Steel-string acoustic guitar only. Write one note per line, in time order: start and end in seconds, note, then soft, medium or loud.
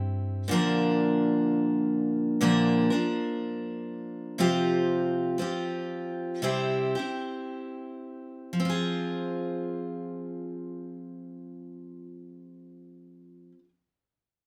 0.00 0.51 C4 soft
0.00 0.50 E4 soft
0.00 0.49 G4 soft
0.48 2.39 A#2 medium
0.48 2.40 D3 medium
0.48 2.40 F3 medium
0.48 2.41 A#3 medium
0.52 2.41 D4 medium
0.52 2.42 A#4 medium
2.41 2.90 A#2 medium
2.41 2.90 D3 medium
2.41 2.90 F3 medium
2.41 2.90 A#3 medium
2.41 2.91 D4 medium
2.41 2.89 A#4 medium
2.90 4.37 F3 soft
2.90 4.39 A#3 soft
2.90 4.39 D4 soft
2.90 4.38 A#4 soft
4.38 5.39 C3 medium
4.38 5.37 F3 medium
4.38 5.38 C4 medium
4.38 5.39 F4 medium
4.38 5.40 G4 medium
5.38 6.42 F3 soft
5.38 6.42 C4 medium
5.38 6.43 F4 medium
5.38 6.43 G4 medium
6.42 6.95 C3 medium
6.42 6.95 G3 medium
6.42 6.96 C4 medium
6.42 6.96 E4 medium
6.42 6.94 G4 medium
6.95 8.58 C4 soft
6.95 8.59 E4 soft
6.95 8.58 G4 soft
8.53 13.52 F3 medium
8.60 13.58 C4 medium
8.65 13.64 F4 medium
8.70 13.68 G#4 medium